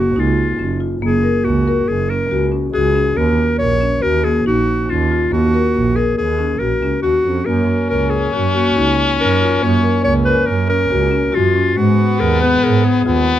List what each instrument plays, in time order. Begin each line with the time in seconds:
Already playing: marimba A#3, clarinet F#4
0.16 double bass C#2, marimba D#4, clarinet F4
0.58 double bass F#1, marimba C#4
0.80 marimba F4
1.01 double bass F#1, marimba A#3, clarinet G#4
1.23 marimba A#4
1.44 double bass C#2, marimba A#3, clarinet F#4
1.68 marimba A#4
1.88 double bass F#1, clarinet G#4
2.09 marimba C#4, clarinet A#4
2.31 double bass C#2, marimba F#4
2.52 marimba C#4
2.73 double bass C#2, marimba F#4, clarinet G#4
2.96 marimba C#4
3.16 double bass D#2, marimba A#3, clarinet A#4
3.59 double bass A#1, marimba A#4, clarinet C#5
3.81 marimba C#4
4.02 double bass D#2, marimba F#4, clarinet A#4
4.24 marimba A#3, clarinet G#4
4.46 double bass A#1, marimba D#4, clarinet F#4
4.89 double bass D#2, marimba C#4, clarinet F4
5.11 marimba F4
5.32 double bass D#2, marimba A#3, clarinet F#4
5.54 marimba A#4
5.75 double bass A#1, marimba A#3
5.96 clarinet G#4, marimba A#4
6.18 double bass D#2, clarinet G#4
6.39 marimba C#4
6.59 double bass A#1, marimba F#4, clarinet A#4
6.82 double bass C#2, marimba C#4
7.02 double bass D#2, clarinet F#4, marimba F#4
7.24 double bass F2, marimba C#4
7.46 double bass F#2, marimba A#3, french horn C#4, clarinet A#4
7.90 double bass C#2, marimba A#4, clarinet A#4
8.10 marimba C#4, clarinet G#4
8.32 double bass F#2, marimba F#4, clarinet F#4
8.54 marimba A#3, clarinet F#4
8.76 double bass C#2, marimba D#4
9.19 double bass F#2, marimba C#4, clarinet A#4
9.40 marimba F4
9.62 double bass F#2, marimba A#3, clarinet C#5
9.83 marimba A#4
10.04 double bass C#2, marimba A#3, clarinet C#5
10.25 marimba A#4, clarinet B4
10.47 double bass F#2, clarinet A#4
10.69 marimba C#4, clarinet A#4
10.90 double bass C#2, marimba F#4
11.11 marimba C#4
11.32 double bass F#2, clarinet F4, marimba F#4
11.55 marimba C#4
11.76 double bass G#2, marimba G#3, french horn B3, clarinet F#4
12.19 double bass D#2, marimba G#4, clarinet A#4
12.41 marimba B3, clarinet B4
12.62 double bass G#2, marimba G#4, clarinet A#4
12.84 marimba B3, clarinet G#4
13.05 double bass D#2, french horn B3, marimba F4